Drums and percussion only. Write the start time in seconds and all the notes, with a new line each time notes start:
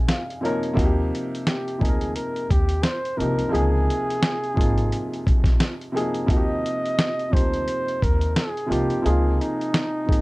0.09 snare, closed hi-hat
0.30 closed hi-hat
0.45 closed hi-hat
0.63 closed hi-hat
0.77 kick, closed hi-hat
1.15 closed hi-hat
1.35 closed hi-hat
1.47 snare, closed hi-hat
1.68 closed hi-hat
1.81 kick, closed hi-hat
2.01 closed hi-hat
2.16 closed hi-hat
2.36 closed hi-hat
2.50 kick, closed hi-hat
2.69 closed hi-hat
2.83 snare, closed hi-hat
3.05 closed hi-hat
3.20 closed hi-hat
3.39 closed hi-hat
3.55 closed hi-hat
3.90 closed hi-hat
4.10 closed hi-hat
4.23 snare, closed hi-hat
4.44 closed hi-hat
4.57 kick, closed hi-hat
4.78 closed hi-hat
4.92 closed hi-hat
5.14 closed hi-hat
5.27 kick, closed hi-hat
5.44 kick, snare, closed hi-hat
5.60 snare, closed hi-hat
5.81 closed hi-hat
5.97 closed hi-hat
6.14 closed hi-hat
6.28 kick, closed hi-hat
6.66 closed hi-hat
6.86 closed hi-hat
6.99 snare, closed hi-hat
7.19 closed hi-hat
7.33 kick, closed hi-hat
7.54 closed hi-hat
7.68 closed hi-hat
7.88 closed hi-hat
8.02 kick, closed hi-hat
8.21 closed hi-hat
8.36 snare, closed hi-hat
8.57 closed hi-hat
8.72 closed hi-hat
8.90 closed hi-hat
9.06 closed hi-hat
9.41 closed hi-hat
9.61 closed hi-hat
9.74 snare, closed hi-hat
10.09 kick, closed hi-hat